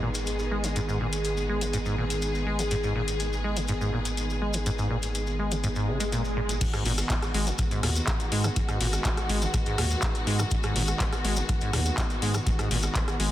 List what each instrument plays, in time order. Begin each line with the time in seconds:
Already playing: analog synth bass G#1, string section D#3 G#3 B3 G#4
0.03 acid bass A#2
0.15 closed hi-hat, maracas
0.27 closed hi-hat, maracas
0.39 maracas
0.51 acid bass G#3
0.64 acid bass B2, closed hi-hat, maracas
0.76 acid bass G#2, closed hi-hat, maracas
0.88 acid bass G#2, maracas
1.00 acid bass A#2
1.13 closed hi-hat, maracas
1.24 closed hi-hat, maracas
1.37 maracas
1.49 acid bass G#3
1.61 acid bass B2, closed hi-hat, maracas
1.73 acid bass G#2, closed hi-hat, maracas
1.86 acid bass G#2, maracas
1.98 acid bass A#2
2.10 closed hi-hat, maracas
2.22 closed hi-hat, maracas
2.35 maracas
2.47 acid bass G#3
2.59 acid bass B2, closed hi-hat, maracas
2.71 acid bass G#2, closed hi-hat, maracas
2.83 acid bass G#2, maracas
2.95 acid bass A#2
3.08 closed hi-hat, maracas
3.20 closed hi-hat, maracas
3.33 maracas
3.44 acid bass G#3
3.57 acid bass B2, closed hi-hat, maracas
3.68 acid bass G#2, closed hi-hat, maracas
3.81 acid bass G#2, maracas
3.93 acid bass A#2
4.05 closed hi-hat, maracas
4.17 closed hi-hat, maracas
4.30 maracas
4.42 acid bass G#3
4.53 acid bass B2, closed hi-hat, maracas
4.66 acid bass G#2, closed hi-hat, maracas
4.78 acid bass G#2, maracas
4.90 acid bass A#2
5.03 closed hi-hat, maracas
5.15 closed hi-hat, maracas
5.27 maracas
5.39 acid bass G#3
5.51 acid bass B2, closed hi-hat, maracas
5.63 acid bass G#2, closed hi-hat, swell, maracas
5.76 acid bass G#2, maracas
5.88 acid bass C#3
6.00 acid bass G#3, closed hi-hat, maracas
6.12 acid bass A#2, closed hi-hat, maracas
6.25 maracas
6.37 acid bass A#2
6.49 closed hi-hat, maracas
6.61 acid bass G#2, string section D#3 G#3 B3 F#4, kick, closed hi-hat, crash, maracas
6.73 acid bass G#2, cross-stick, closed hi-hat, maracas
6.86 analog synth bass G#1, acid bass A#2, open hi-hat
6.98 cross-stick, closed hi-hat, maracas
7.10 kick, clap, closed hi-hat, maracas
7.22 cross-stick, closed hi-hat, maracas
7.34 analog synth bass G#1, acid bass G#3, open hi-hat
7.47 acid bass B2, closed hi-hat, maracas
7.58 acid bass G#2, kick, cross-stick, closed hi-hat, maracas
7.71 acid bass G#2, closed hi-hat, maracas
7.83 analog synth bass D#2, acid bass A#2, cross-stick, open hi-hat
7.96 closed hi-hat, maracas
8.07 kick, cross-stick, clap, closed hi-hat, maracas
8.20 closed hi-hat, maracas
8.32 analog synth bass G#2, acid bass G#3, open hi-hat
8.44 acid bass B2, cross-stick, closed hi-hat, maracas
8.56 acid bass G#2, kick, closed hi-hat, maracas
8.69 acid bass G#2, cross-stick, closed hi-hat, maracas
8.81 analog synth bass G#1, acid bass A#2, open hi-hat
8.93 cross-stick, closed hi-hat, maracas
9.05 kick, clap, closed hi-hat, maracas
9.17 cross-stick, closed hi-hat, maracas
9.29 analog synth bass G#1, acid bass G#3, open hi-hat
9.42 acid bass B2, closed hi-hat, maracas
9.54 acid bass G#2, kick, cross-stick, closed hi-hat, maracas
9.66 acid bass G#2, closed hi-hat, maracas
9.78 analog synth bass D#2, acid bass A#2, cross-stick, open hi-hat
9.91 closed hi-hat, maracas
10.02 kick, cross-stick, clap, closed hi-hat, maracas
10.15 closed hi-hat, maracas
10.27 analog synth bass G#2, acid bass G#3, open hi-hat
10.39 acid bass B2, cross-stick, closed hi-hat, maracas
10.51 acid bass G#2, kick, closed hi-hat, maracas
10.63 acid bass G#2, cross-stick, closed hi-hat, maracas
10.76 analog synth bass G#1, acid bass A#2, open hi-hat
10.88 cross-stick, closed hi-hat, maracas
11.00 kick, clap, closed hi-hat, maracas
11.13 cross-stick, closed hi-hat, maracas
11.25 analog synth bass G#1, acid bass G#3, open hi-hat
11.36 acid bass B2, closed hi-hat, maracas
11.49 acid bass G#2, kick, cross-stick, closed hi-hat, maracas
11.61 acid bass G#2, closed hi-hat, maracas
11.73 analog synth bass D#2, acid bass A#2, cross-stick, open hi-hat
11.86 closed hi-hat, maracas
11.98 kick, cross-stick, clap, closed hi-hat, maracas
12.10 closed hi-hat, maracas
12.22 analog synth bass G#2, acid bass G#3, open hi-hat
12.34 acid bass B2, cross-stick, closed hi-hat, maracas
12.46 acid bass G#2, kick, closed hi-hat, maracas
12.59 acid bass G#2, cross-stick, closed hi-hat, maracas
12.71 analog synth bass G#1, acid bass A#2, open hi-hat
12.82 cross-stick, closed hi-hat, maracas
12.95 kick, clap, closed hi-hat, maracas
13.08 cross-stick, closed hi-hat, maracas
13.20 analog synth bass G#1, acid bass G#3, open hi-hat